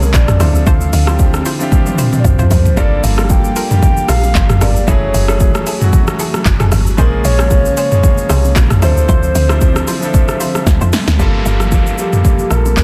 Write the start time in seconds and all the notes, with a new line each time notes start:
Already playing: C2 C#3 F3 G#3 A#3 C#4 G#4
0.02 A#4, low bongo, shaker
0.14 A#1 D5, kick, clap, high bongo, low conga, shaker
0.28 cross-stick, mid tom, shaker
0.39 D2 D3 F3 C4 D4 E4 F4 A4 C5, cross-stick, open hi-hat, low bongo, shaker
0.55 shaker
0.66 D2 D4 F4 C5 F5, kick, low conga, shaker
0.81 shaker
0.93 D2, open hi-hat, shaker
1.06 F3 C4 D4 E4 F4 G4 C5, cross-stick, low bongo, shaker
1.19 kick, high bongo, shaker
1.34 cross-stick, shaker
1.45 E4 F4 C5, open hi-hat, shaker
1.59 F3 C4 D4 E4 G4, shaker
1.72 kick, high tom, high bongo, low conga, shaker
1.86 high tom, shaker
1.98 E4 F4 C5, open hi-hat, mid tom, shaker
2.13 mid tom, low bongo, shaker
2.19 D5
2.24 D2 C5, kick, mid tom, high bongo, low conga, shaker
2.39 E4 F4 C5, mid tom, shaker
2.50 F2, floor tom, open hi-hat, low bongo, shaker
2.65 floor tom, shaker
2.76 G1 G3 A#3 D4 F4 G4 A4 A#4 D5, kick, low conga, shaker
3.04 G1 F5, open hi-hat, shaker
3.18 F4 A4 A#4 F5, cross-stick, low bongo, shaker
3.30 G5, kick, high bongo, shaker
3.44 shaker
3.56 F4 A4 A#4, open hi-hat, shaker
3.70 G3 A#3 D4 F4 G4, mid tom, shaker
3.82 G5, kick, high bongo, low conga, shaker
3.97 shaker
4.09 A#1 F4 A4 A#4 F5, cross-stick, open hi-hat, shaker
4.24 low bongo, shaker
4.35 G1, kick, clap, high bongo, low conga, shaker
4.50 cross-stick, mid tom, shaker
4.61 G1 F4 A4 A#4 D5, cross-stick, open hi-hat, low bongo, shaker
4.76 shaker
4.87 F#1 E3 F#3 A3 C#4 E4 F#4 G#4 A4 C#5, kick, low conga, shaker
5.14 F#1, open hi-hat, shaker
5.28 F#3 A3 C#4 E4 G#4 A4 C#5, cross-stick, low bongo, shaker
5.40 kick, high bongo, shaker
5.55 cross-stick, shaker
5.66 E4 G#4 A4, open hi-hat, shaker
5.80 F#3 A3 C#4 E4 F#4, mid tom, shaker
5.93 kick, high bongo, low conga, shaker
6.07 cross-stick, shaker
6.19 E4 G#4 A4, open hi-hat, shaker
6.34 cross-stick, low bongo, shaker
6.45 F#1, kick, clap, high bongo, low conga, shaker
6.60 E4 G#4 A4, cross-stick, mid tom, shaker
6.72 G1, cross-stick, open hi-hat, low bongo, shaker
6.87 shaker
6.97 A#1 C#3 F3 G#3 A#3 C#4 G#4 A#4 C5, kick, low conga, shaker
7.25 A#1 C#5, open hi-hat, shaker
7.39 C#4 G#4 C5, cross-stick, low bongo, shaker
7.51 kick, high bongo, shaker
7.65 shaker
7.77 C#4 G#4 C5 C#5, open hi-hat, shaker
7.91 F3 G#3 A#3 C#4 G#4, mid tom, shaker
8.03 kick, high bongo, low conga, shaker
8.18 shaker
8.30 C2 C#4 G#4 C5, cross-stick, open hi-hat, shaker
8.45 low bongo, shaker
8.56 A#1, kick, clap, high bongo, low conga, shaker
8.70 cross-stick, mid tom, shaker
8.81 D2 D3 F3 C4 D4 E4 F4 A4 C5 E5, cross-stick, open hi-hat, low bongo, shaker
8.97 shaker
9.08 D2 E4 F4 C5, kick, low conga, shaker
9.23 shaker
9.35 D2, open hi-hat, shaker
9.49 F3 C4 D4 E4 F4 C5, cross-stick, shaker
9.61 kick, high bongo, shaker
9.76 cross-stick, shaker
9.87 E4 F4 C5, open hi-hat, low bongo, shaker
10.01 F3 C4 D4 E4 A4, shaker
10.14 kick, high bongo, low conga, shaker
10.28 cross-stick, shaker
10.40 E4 F4 C5, open hi-hat, shaker
10.55 cross-stick, low bongo, shaker
10.66 D2, kick, snare, high bongo, low conga, shaker
10.81 F2 E4 F4 C5, shaker
10.93 snare, open hi-hat, low bongo, shaker
11.08 D2, snare, shaker
11.18 G1 F3 G3 A#3 F4 G4 A4, kick, downlifter, low conga, shaker
11.46 G1, shaker
11.59 G3 A#3 F4 A4, cross-stick, shaker
11.72 kick, high bongo, shaker
11.87 shaker
11.97 G3 A#3 F4 G4 A4, shaker
12.13 mid tom, shaker
12.25 kick, low conga, shaker
12.39 shaker
12.50 A#1 G3 A#3 F4 A4 A#4, cross-stick, shaker
12.66 low bongo, shaker
12.77 G1 A#4, kick, clap, high bongo, low conga, shaker